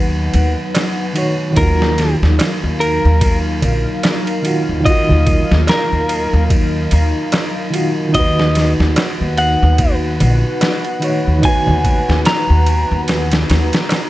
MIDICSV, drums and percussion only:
0, 0, Header, 1, 3, 480
1, 0, Start_track
1, 0, Key_signature, -6, "minor"
1, 0, Tempo, 821918
1, 917, Time_signature, 4, 2, 24, 8
1, 8232, End_track
2, 0, Start_track
2, 0, Title_t, "Darbuka"
2, 436, Note_on_c, 9, 63, 83
2, 494, Note_off_c, 9, 63, 0
2, 1395, Note_on_c, 9, 63, 81
2, 1454, Note_off_c, 9, 63, 0
2, 2116, Note_on_c, 9, 64, 75
2, 2174, Note_off_c, 9, 64, 0
2, 2357, Note_on_c, 9, 63, 78
2, 2415, Note_off_c, 9, 63, 0
2, 2973, Note_on_c, 9, 64, 74
2, 3031, Note_off_c, 9, 64, 0
2, 3313, Note_on_c, 9, 63, 75
2, 3372, Note_off_c, 9, 63, 0
2, 4278, Note_on_c, 9, 63, 79
2, 4337, Note_off_c, 9, 63, 0
2, 5235, Note_on_c, 9, 63, 83
2, 5293, Note_off_c, 9, 63, 0
2, 5959, Note_on_c, 9, 64, 83
2, 6017, Note_off_c, 9, 64, 0
2, 6197, Note_on_c, 9, 63, 69
2, 6255, Note_off_c, 9, 63, 0
2, 6816, Note_on_c, 9, 64, 76
2, 6875, Note_off_c, 9, 64, 0
2, 7162, Note_on_c, 9, 63, 72
2, 7221, Note_off_c, 9, 63, 0
2, 8114, Note_on_c, 9, 63, 77
2, 8172, Note_off_c, 9, 63, 0
2, 8232, End_track
3, 0, Start_track
3, 0, Title_t, "Drums"
3, 196, Note_on_c, 9, 51, 64
3, 254, Note_off_c, 9, 51, 0
3, 438, Note_on_c, 9, 51, 94
3, 446, Note_on_c, 9, 38, 110
3, 496, Note_off_c, 9, 51, 0
3, 505, Note_off_c, 9, 38, 0
3, 675, Note_on_c, 9, 51, 63
3, 733, Note_off_c, 9, 51, 0
3, 914, Note_on_c, 9, 51, 85
3, 916, Note_on_c, 9, 36, 112
3, 972, Note_off_c, 9, 51, 0
3, 974, Note_off_c, 9, 36, 0
3, 1063, Note_on_c, 9, 38, 59
3, 1121, Note_off_c, 9, 38, 0
3, 1157, Note_on_c, 9, 51, 69
3, 1165, Note_on_c, 9, 38, 43
3, 1215, Note_off_c, 9, 51, 0
3, 1224, Note_off_c, 9, 38, 0
3, 1303, Note_on_c, 9, 38, 48
3, 1361, Note_off_c, 9, 38, 0
3, 1399, Note_on_c, 9, 51, 91
3, 1407, Note_on_c, 9, 38, 116
3, 1457, Note_off_c, 9, 51, 0
3, 1466, Note_off_c, 9, 38, 0
3, 1641, Note_on_c, 9, 51, 66
3, 1700, Note_off_c, 9, 51, 0
3, 1876, Note_on_c, 9, 36, 105
3, 1876, Note_on_c, 9, 51, 94
3, 1934, Note_off_c, 9, 51, 0
3, 1935, Note_off_c, 9, 36, 0
3, 2117, Note_on_c, 9, 51, 65
3, 2175, Note_off_c, 9, 51, 0
3, 2356, Note_on_c, 9, 51, 86
3, 2365, Note_on_c, 9, 38, 115
3, 2414, Note_off_c, 9, 51, 0
3, 2423, Note_off_c, 9, 38, 0
3, 2495, Note_on_c, 9, 51, 45
3, 2553, Note_off_c, 9, 51, 0
3, 2597, Note_on_c, 9, 51, 65
3, 2655, Note_off_c, 9, 51, 0
3, 2836, Note_on_c, 9, 36, 122
3, 2838, Note_on_c, 9, 51, 92
3, 2895, Note_off_c, 9, 36, 0
3, 2897, Note_off_c, 9, 51, 0
3, 3075, Note_on_c, 9, 51, 69
3, 3076, Note_on_c, 9, 36, 97
3, 3133, Note_off_c, 9, 51, 0
3, 3135, Note_off_c, 9, 36, 0
3, 3221, Note_on_c, 9, 38, 55
3, 3280, Note_off_c, 9, 38, 0
3, 3317, Note_on_c, 9, 51, 82
3, 3326, Note_on_c, 9, 38, 122
3, 3375, Note_off_c, 9, 51, 0
3, 3384, Note_off_c, 9, 38, 0
3, 3558, Note_on_c, 9, 51, 69
3, 3616, Note_off_c, 9, 51, 0
3, 3797, Note_on_c, 9, 36, 115
3, 3798, Note_on_c, 9, 51, 87
3, 3855, Note_off_c, 9, 36, 0
3, 3857, Note_off_c, 9, 51, 0
3, 4036, Note_on_c, 9, 51, 68
3, 4094, Note_off_c, 9, 51, 0
3, 4275, Note_on_c, 9, 51, 86
3, 4284, Note_on_c, 9, 38, 113
3, 4334, Note_off_c, 9, 51, 0
3, 4343, Note_off_c, 9, 38, 0
3, 4518, Note_on_c, 9, 51, 67
3, 4576, Note_off_c, 9, 51, 0
3, 4756, Note_on_c, 9, 51, 91
3, 4757, Note_on_c, 9, 36, 116
3, 4815, Note_off_c, 9, 36, 0
3, 4815, Note_off_c, 9, 51, 0
3, 4903, Note_on_c, 9, 38, 58
3, 4961, Note_off_c, 9, 38, 0
3, 4995, Note_on_c, 9, 51, 74
3, 5004, Note_on_c, 9, 38, 42
3, 5053, Note_off_c, 9, 51, 0
3, 5062, Note_off_c, 9, 38, 0
3, 5141, Note_on_c, 9, 38, 48
3, 5199, Note_off_c, 9, 38, 0
3, 5234, Note_on_c, 9, 51, 92
3, 5243, Note_on_c, 9, 38, 117
3, 5292, Note_off_c, 9, 51, 0
3, 5301, Note_off_c, 9, 38, 0
3, 5475, Note_on_c, 9, 51, 63
3, 5533, Note_off_c, 9, 51, 0
3, 5714, Note_on_c, 9, 51, 90
3, 5716, Note_on_c, 9, 36, 114
3, 5772, Note_off_c, 9, 51, 0
3, 5775, Note_off_c, 9, 36, 0
3, 5959, Note_on_c, 9, 51, 64
3, 6017, Note_off_c, 9, 51, 0
3, 6197, Note_on_c, 9, 51, 93
3, 6206, Note_on_c, 9, 38, 120
3, 6256, Note_off_c, 9, 51, 0
3, 6265, Note_off_c, 9, 38, 0
3, 6334, Note_on_c, 9, 51, 41
3, 6392, Note_off_c, 9, 51, 0
3, 6436, Note_on_c, 9, 51, 65
3, 6495, Note_off_c, 9, 51, 0
3, 6676, Note_on_c, 9, 51, 87
3, 6677, Note_on_c, 9, 36, 112
3, 6734, Note_off_c, 9, 51, 0
3, 6735, Note_off_c, 9, 36, 0
3, 6918, Note_on_c, 9, 36, 102
3, 6918, Note_on_c, 9, 51, 77
3, 6976, Note_off_c, 9, 36, 0
3, 6977, Note_off_c, 9, 51, 0
3, 7064, Note_on_c, 9, 38, 58
3, 7123, Note_off_c, 9, 38, 0
3, 7156, Note_on_c, 9, 51, 88
3, 7165, Note_on_c, 9, 38, 116
3, 7214, Note_off_c, 9, 51, 0
3, 7223, Note_off_c, 9, 38, 0
3, 7396, Note_on_c, 9, 51, 66
3, 7455, Note_off_c, 9, 51, 0
3, 7637, Note_on_c, 9, 51, 74
3, 7646, Note_on_c, 9, 38, 100
3, 7696, Note_off_c, 9, 51, 0
3, 7705, Note_off_c, 9, 38, 0
3, 7776, Note_on_c, 9, 51, 77
3, 7785, Note_on_c, 9, 38, 104
3, 7834, Note_off_c, 9, 51, 0
3, 7843, Note_off_c, 9, 38, 0
3, 7881, Note_on_c, 9, 51, 79
3, 7890, Note_on_c, 9, 38, 102
3, 7940, Note_off_c, 9, 51, 0
3, 7949, Note_off_c, 9, 38, 0
3, 8018, Note_on_c, 9, 51, 78
3, 8027, Note_on_c, 9, 38, 106
3, 8077, Note_off_c, 9, 51, 0
3, 8085, Note_off_c, 9, 38, 0
3, 8120, Note_on_c, 9, 51, 78
3, 8129, Note_on_c, 9, 38, 105
3, 8179, Note_off_c, 9, 51, 0
3, 8187, Note_off_c, 9, 38, 0
3, 8232, End_track
0, 0, End_of_file